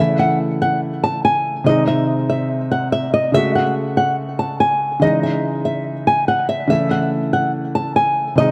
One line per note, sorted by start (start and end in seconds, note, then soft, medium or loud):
0.00 1.62 C#3 medium
0.00 1.63 E3 medium
0.00 1.63 A3 medium
0.00 1.64 E4 medium
0.00 0.17 E5 loud
0.19 0.38 F#5 medium
0.62 0.80 F#5 medium
1.04 1.22 A5 medium
1.25 1.64 G#5 medium
1.64 3.30 C3 medium
1.64 3.31 D#3 medium
1.64 3.31 G#3 medium
1.64 1.85 D#5 loud
1.69 3.32 D#4 medium
1.87 2.06 E5 medium
2.30 2.48 E5 medium
2.71 2.90 F#5 medium
2.92 3.10 E5 medium
3.14 3.32 D#5 medium
3.32 4.98 C#3 medium
3.32 4.98 G#3 medium
3.32 4.99 A3 medium
3.32 3.52 E5 loud
3.37 5.00 F#4 medium
3.55 3.73 F#5 medium
3.97 4.15 F#5 medium
4.39 4.57 A5 medium
4.60 5.00 G#5 medium
5.00 6.65 C#3 medium
5.00 6.66 E3 medium
5.00 6.67 G#3 medium
5.00 5.20 D#5 loud
5.04 6.68 D#4 medium
5.23 5.41 E5 medium
5.65 5.83 E5 medium
6.07 6.25 G#5 medium
6.28 6.46 F#5 medium
6.49 6.67 E5 medium
6.68 8.33 C#3 medium
6.68 8.34 E3 medium
6.68 8.35 A3 medium
6.68 6.88 E5 loud
6.72 8.36 E4 medium
6.91 7.09 F#5 medium
7.33 7.51 F#5 medium
7.75 7.93 A5 medium
7.96 8.35 G#5 medium
8.35 8.51 C3 medium
8.35 8.51 D#3 medium
8.35 8.51 G#3 medium
8.35 8.51 D#5 loud
8.40 8.51 D#4 medium